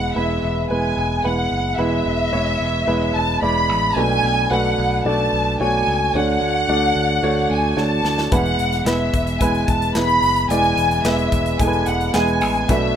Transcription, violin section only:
0.00 0.12 F#5 medium
0.16 0.70 E5 medium
0.70 1.21 G#5 medium
1.24 1.79 F#5 medium
1.78 3.14 E5 medium
3.14 3.42 A5 medium
3.42 3.93 B5 medium
3.96 4.51 G#5 loud
4.50 5.05 F#5 medium
5.06 5.56 A5 medium
5.61 6.15 G#5 medium
6.15 7.51 F#5 loud
7.50 7.78 G#5 medium
7.78 8.32 A5 medium
8.32 8.87 F#5 medium
8.88 9.38 E5 medium
9.41 9.68 G#5 medium
9.68 9.96 A5 medium
9.96 10.47 B5 medium
10.50 11.01 G#5 medium
11.05 11.60 E5 medium
11.59 11.87 G#5 medium
11.87 12.14 F#5 medium
12.14 12.69 G#5 medium
12.70 12.96 E5 medium

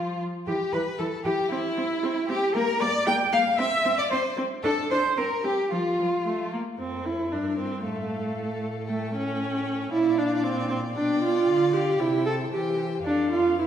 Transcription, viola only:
0.00 0.20 F3 medium
0.48 0.56 E3 medium
0.74 0.82 E3 medium
0.99 1.07 E3 medium
1.25 1.33 E3 medium
1.51 1.59 C4 medium
1.77 1.85 C4 medium
2.03 2.11 C4 medium
2.29 2.37 C4 medium
2.55 2.63 A#3 medium
2.81 2.89 A#3 medium
3.07 3.15 A#3 medium
3.33 3.41 A#3 medium
3.59 3.67 C4 medium
3.85 3.93 C4 medium
4.11 4.19 C4 medium
4.37 4.45 C4 medium
4.64 4.72 D4 medium
4.91 4.99 D4 medium
5.17 5.25 C4 medium
5.44 5.52 C4 medium
5.72 5.80 F3 medium
5.99 6.07 F3 medium
6.25 6.51 A3 medium
6.53 6.61 A#3 medium
6.79 7.07 C4 medium
7.05 7.34 E4 medium
7.32 7.58 D4 medium
7.58 7.84 C4 medium
7.85 8.61 A3 medium
8.89 9.13 A3 medium
9.15 9.91 C#4 medium
9.92 10.20 E4 medium
10.18 10.45 D4 medium
10.44 10.69 C4 medium
10.70 10.78 C4 medium
10.96 11.22 D4 medium
11.22 11.75 F4 medium
11.74 12.01 G4 medium
12.00 12.26 E4 medium
12.26 12.34 A4 medium
12.52 12.78 G4 medium
13.05 13.30 D4 medium
13.32 13.58 F4 medium
13.59 13.67 E4 medium

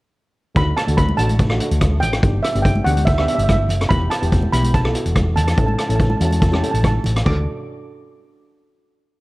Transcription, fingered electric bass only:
0.56 0.72 D2 medium
0.88 1.11 D2 medium
1.19 1.58 A1 medium
1.71 2.03 D2 medium
2.03 2.18 A1 medium
2.23 2.39 G1 medium
2.55 2.78 G1 medium
2.86 3.26 D2 medium
3.38 3.69 G1 medium
3.69 3.85 F#1 medium
3.90 4.06 E1 medium
4.22 4.46 E1 medium
4.53 4.93 B1 medium
5.05 5.38 E1 medium
5.37 5.53 E2 medium
5.58 5.74 A1 medium
5.89 6.13 A1 medium
6.21 6.61 E2 medium
6.74 6.98 A1 medium
7.05 7.21 A1 medium
7.26 7.46 D2 medium

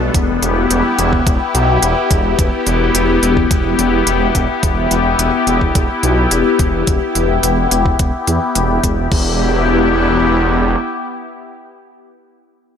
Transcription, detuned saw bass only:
0.15 0.38 E1 medium
0.42 0.66 E1 medium
0.70 0.82 E1 medium
0.99 1.22 E1 medium
1.27 1.38 E1 medium
1.55 1.78 B1 medium
1.83 1.94 E1 medium
2.11 2.34 E1 medium
2.39 2.50 E1 medium
2.67 2.90 E1 medium
2.95 3.18 E1 medium
3.23 3.46 E1 medium
3.51 3.74 E1 medium
3.79 4.02 E1 medium
4.07 4.30 E1 loud
4.35 4.47 E1 loud
4.63 4.86 E1 medium
4.91 5.15 E1 medium
5.19 5.31 E1 medium
5.47 5.71 E1 medium
5.75 5.87 E1 medium
6.03 6.27 B1 medium
6.31 6.43 E1 medium
6.59 6.83 E1 medium
6.87 6.99 E1 medium
7.15 7.39 E1 medium
7.44 7.67 E1 medium
7.72 7.95 E1 medium
8.00 8.11 E1 medium
8.28 8.39 E2 medium
8.56 8.79 E1 medium
8.84 9.07 E1 medium
9.12 10.76 E1 medium

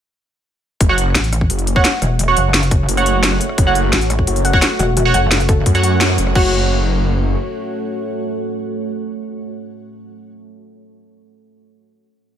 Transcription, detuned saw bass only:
0.81 1.14 F#1 loud
1.50 1.83 F#1 loud
2.89 3.39 F#1 loud
3.58 3.91 F#1 loud
4.27 4.61 F#1 loud
5.66 6.17 F#2 loud
6.18 6.34 F#1 loud
6.36 7.36 F#1 loud

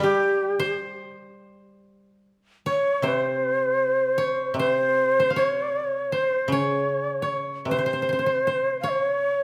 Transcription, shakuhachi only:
0.02 0.75 G4 medium
2.69 3.09 C#5 medium
3.07 4.58 C5 medium
4.59 5.31 C5 medium
5.37 6.15 C#5 medium
6.14 6.55 C5 medium
6.53 7.42 C#5 medium
7.68 7.81 B4 medium
7.81 8.77 C5 medium
8.80 8.90 F5 soft
8.89 9.02 C5 medium
9.02 9.43 C#5 medium

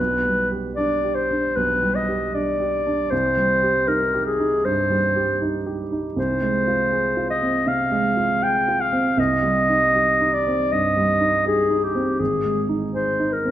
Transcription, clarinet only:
0.00 0.49 B4 medium
0.76 1.16 D5 medium
1.15 1.57 C5 medium
1.56 1.96 B4 medium
1.95 2.36 D#5 soft
2.34 3.12 D5 medium
3.11 3.89 C5 medium
3.88 4.25 A#4 medium
4.26 4.66 G#4 medium
4.65 5.42 C5 medium
6.17 7.26 C5 medium
7.30 7.69 D#5 medium
7.67 8.44 F5 medium
8.43 8.82 G5 medium
8.80 9.20 F5 medium
9.19 10.35 D#5 medium
10.33 10.73 D5 medium
10.72 11.46 D#5 medium
11.46 11.85 G#4 medium
11.84 12.21 G4 soft
12.19 12.68 G#4 medium
12.94 13.34 C5 soft
13.33 13.51 A#4 soft

